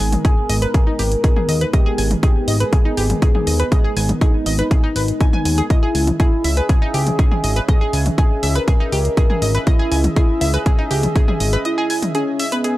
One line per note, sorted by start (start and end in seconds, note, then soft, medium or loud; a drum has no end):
0.00 0.16 G#1 loud
0.00 5.66 G#3 medium
0.00 5.66 B3 medium
0.00 5.66 D#4 medium
0.00 0.13 G#4 loud
0.00 5.66 A#4 medium
0.12 closed hi-hat medium
0.12 mid tom medium
0.25 0.33 G#4 medium
0.25 0.53 G#4 loud
0.25 0.33 G#5 medium
0.25 kick loud
0.25 closed hi-hat medium
0.49 0.66 G#1 loud
0.49 0.58 D#5 loud
0.49 0.58 D#6 medium
0.49 open hi-hat loud
0.62 1.64 A#4 loud
0.62 0.67 B4 loud
0.62 0.67 B5 medium
0.62 closed hi-hat medium
0.74 0.86 G#4 medium
0.74 0.86 G#5 medium
0.74 kick loud
0.74 closed hi-hat medium
0.87 0.92 D#4 loud
0.87 0.92 D#5 medium
0.99 1.16 G#1 medium
0.99 1.04 G4 loud
0.99 1.04 G5 medium
0.99 open hi-hat loud
1.12 closed hi-hat medium
1.24 1.32 G#4 medium
1.24 1.32 G#5 medium
1.24 kick loud
1.24 closed hi-hat medium
1.36 1.48 G#4 medium
1.36 1.48 G#5 medium
1.36 mid tom medium
1.49 1.65 D#2 loud
1.49 1.54 D#5 medium
1.49 1.54 D#6 medium
1.49 open hi-hat loud
1.61 1.66 B4 loud
1.61 1.66 B5 medium
1.61 closed hi-hat medium
1.73 2.12 G4 loud
1.73 1.82 D#5 medium
1.73 1.82 D#6 medium
1.73 kick loud
1.73 closed hi-hat medium
1.86 1.94 G#4 loud
1.86 1.94 G#5 medium
1.98 2.15 G#1 loud
1.98 2.03 G#5 medium
1.98 2.03 G#6 medium
1.98 open hi-hat loud
2.11 closed hi-hat medium
2.11 mid tom medium
2.23 2.52 G4 loud
2.23 2.31 G#4 medium
2.23 2.31 G#5 medium
2.23 kick loud
2.23 closed hi-hat medium
2.48 2.64 G#1 loud
2.48 2.56 D#5 loud
2.48 2.56 D#6 medium
2.48 open hi-hat loud
2.60 3.62 G#4 loud
2.60 2.65 B4 loud
2.60 2.65 B5 medium
2.60 closed hi-hat medium
2.73 2.85 G#4 medium
2.73 2.85 G#5 medium
2.73 kick loud
2.73 closed hi-hat medium
2.85 2.90 D#4 loud
2.85 2.90 D#5 medium
2.97 3.14 G#1 medium
2.97 3.02 G4 loud
2.97 3.02 G5 medium
2.97 open hi-hat loud
3.10 closed hi-hat medium
3.10 mid tom medium
3.22 3.31 G#4 medium
3.22 3.31 G#5 medium
3.22 kick loud
3.22 closed hi-hat medium
3.35 3.46 G#4 medium
3.35 3.46 G#5 medium
3.35 mid tom medium
3.47 3.64 D#2 loud
3.47 3.52 D#5 medium
3.47 3.52 D#6 medium
3.47 open hi-hat loud
3.60 3.64 B4 loud
3.60 3.64 B5 medium
3.60 closed hi-hat medium
3.72 4.10 G#4 loud
3.72 3.80 D#5 medium
3.72 3.80 D#6 medium
3.72 kick loud
3.72 closed hi-hat medium
3.84 3.93 G#4 loud
3.84 3.93 G#5 medium
3.97 4.13 G#1 loud
3.97 4.02 G#5 medium
3.97 4.02 G#6 medium
3.97 open hi-hat loud
4.09 closed hi-hat medium
4.09 mid tom medium
4.21 4.50 D#4 loud
4.21 4.30 G#4 medium
4.21 4.30 G#5 medium
4.21 kick loud
4.21 closed hi-hat medium
4.46 4.63 G#1 loud
4.46 4.55 D#5 loud
4.46 4.55 D#6 medium
4.46 open hi-hat loud
4.59 5.60 D#4 loud
4.59 4.64 B4 loud
4.59 4.64 B5 medium
4.59 closed hi-hat medium
4.71 4.83 G#4 medium
4.71 4.83 G#5 medium
4.71 kick loud
4.71 closed hi-hat medium
4.84 4.88 D#4 loud
4.84 4.88 D#5 medium
4.96 5.12 G#1 medium
4.96 5.01 B4 loud
4.96 5.01 B5 medium
4.96 open hi-hat loud
5.08 closed hi-hat medium
5.20 5.26 G#5 medium
5.20 5.26 G#6 medium
5.20 kick loud
5.20 closed hi-hat medium
5.33 5.41 G#5 loud
5.33 5.41 G#6 medium
5.33 mid tom medium
5.45 5.62 D#2 medium
5.45 5.57 G#5 medium
5.45 5.57 G#6 medium
5.45 open hi-hat loud
5.58 5.66 G#4 loud
5.58 5.66 G#5 medium
5.58 closed hi-hat medium
5.70 12.78 C#4 medium
5.70 6.08 E4 loud
5.70 12.78 G#4 medium
5.70 5.78 D#5 medium
5.70 12.78 D#5 medium
5.70 12.78 E5 medium
5.70 5.78 D#6 medium
5.70 kick loud
5.70 closed hi-hat medium
5.83 5.91 G#4 loud
5.83 5.91 G#5 medium
5.95 6.11 C#2 loud
5.95 6.00 G#5 medium
5.95 6.00 G#6 medium
5.95 open hi-hat loud
6.07 closed hi-hat medium
6.07 mid tom medium
6.20 6.48 E4 loud
6.20 6.28 G#4 medium
6.20 6.28 G#5 medium
6.20 kick loud
6.20 closed hi-hat medium
6.44 6.61 C#2 loud
6.44 6.53 E5 loud
6.44 6.53 E6 medium
6.44 open hi-hat loud
6.57 7.59 G#4 loud
6.57 6.62 B4 loud
6.57 6.62 B5 medium
6.57 closed hi-hat medium
6.69 6.81 G#4 medium
6.69 6.81 G#5 medium
6.69 kick loud
6.69 closed hi-hat medium
6.82 6.87 D#4 loud
6.82 6.87 D#5 medium
6.94 7.11 C#2 medium
6.94 6.99 G4 loud
6.94 6.99 G5 medium
6.94 open hi-hat loud
7.07 closed hi-hat medium
7.07 mid tom medium
7.19 7.27 G#4 medium
7.19 7.27 G#5 medium
7.19 kick loud
7.19 closed hi-hat medium
7.31 7.43 G#4 medium
7.31 7.43 G#5 medium
7.31 mid tom medium
7.44 7.60 G#1 medium
7.44 7.49 D#5 medium
7.44 7.49 D#6 medium
7.44 open hi-hat loud
7.56 7.61 B4 loud
7.56 7.61 B5 medium
7.56 closed hi-hat medium
7.68 8.07 G#4 loud
7.68 7.77 D#5 medium
7.68 7.77 D#6 medium
7.68 kick loud
7.68 closed hi-hat medium
7.81 7.89 G#4 loud
7.81 7.89 G#5 medium
7.93 8.10 C#2 loud
7.93 7.98 G#5 medium
7.93 7.98 G#6 medium
7.93 open hi-hat loud
8.06 closed hi-hat medium
8.06 mid tom medium
8.18 8.47 G#4 loud
8.18 8.26 G#4 medium
8.18 8.26 G#5 medium
8.18 kick loud
8.18 closed hi-hat medium
8.43 8.59 C#2 loud
8.43 8.51 E5 loud
8.43 8.51 E6 medium
8.43 open hi-hat loud
8.55 9.57 A#4 loud
8.55 8.60 B4 loud
8.55 8.60 B5 medium
8.55 closed hi-hat medium
8.68 8.80 G#4 medium
8.68 8.80 G#5 medium
8.68 kick loud
8.68 closed hi-hat medium
8.80 8.85 D#4 loud
8.80 8.85 D#5 medium
8.92 9.09 C#2 medium
8.92 8.97 G4 loud
8.92 8.97 G5 medium
8.92 open hi-hat loud
9.05 closed hi-hat medium
9.17 9.26 G#4 medium
9.17 9.26 G#5 medium
9.17 kick loud
9.17 closed hi-hat medium
9.30 9.41 G#4 medium
9.30 9.41 G#5 medium
9.30 mid tom medium
9.42 9.59 G#1 medium
9.42 9.47 D#5 medium
9.42 9.47 D#6 medium
9.42 open hi-hat loud
9.55 9.60 B4 loud
9.55 9.60 B5 medium
9.55 closed hi-hat medium
9.67 10.05 E4 loud
9.67 9.75 D#5 medium
9.67 9.75 D#6 medium
9.67 kick loud
9.67 closed hi-hat medium
9.79 9.88 G#4 loud
9.79 9.88 G#5 medium
9.92 10.08 C#2 loud
9.92 9.97 G#5 medium
9.92 9.97 G#6 medium
9.92 open hi-hat loud
10.04 closed hi-hat medium
10.04 mid tom medium
10.16 10.45 E4 loud
10.16 10.25 G#4 medium
10.16 10.25 G#5 medium
10.16 kick loud
10.16 closed hi-hat medium
10.41 10.58 C#2 loud
10.41 10.50 E5 loud
10.41 10.50 E6 medium
10.41 open hi-hat loud
10.54 11.55 G#4 loud
10.54 10.59 B4 loud
10.54 10.59 B5 medium
10.54 closed hi-hat medium
10.66 10.78 G#4 medium
10.66 10.78 G#5 medium
10.66 kick loud
10.66 closed hi-hat medium
10.79 10.83 D#4 loud
10.79 10.83 D#5 medium
10.91 11.07 C#2 medium
10.91 10.96 G4 loud
10.91 10.96 G5 medium
10.91 open hi-hat loud
11.03 closed hi-hat medium
11.03 mid tom medium
11.16 11.24 G#4 medium
11.16 11.24 G#5 medium
11.16 kick loud
11.16 closed hi-hat medium
11.28 11.40 G#4 medium
11.28 11.40 G#5 medium
11.28 mid tom medium
11.40 11.57 G#1 loud
11.40 11.45 D#5 medium
11.40 11.45 D#6 medium
11.40 open hi-hat loud
11.53 11.58 B4 loud
11.53 11.58 B5 medium
11.53 closed hi-hat medium
11.65 12.04 E4 loud
11.65 11.74 D#5 medium
11.65 11.74 D#6 medium
11.65 closed hi-hat medium
11.78 11.86 G#4 loud
11.78 11.86 G#5 medium
11.90 11.95 G#5 medium
11.90 11.95 G#6 medium
11.90 open hi-hat loud
12.02 closed hi-hat medium
12.02 mid tom medium
12.15 12.43 C#4 loud
12.15 12.23 G#4 medium
12.15 12.23 G#5 medium
12.15 closed hi-hat medium
12.39 12.48 E5 loud
12.39 12.48 E6 medium
12.39 open hi-hat loud
12.52 12.78 B3 loud
12.52 12.57 B4 loud
12.52 12.57 B5 medium
12.52 closed hi-hat medium
12.64 12.76 G#4 medium
12.64 12.76 G#5 medium
12.64 closed hi-hat medium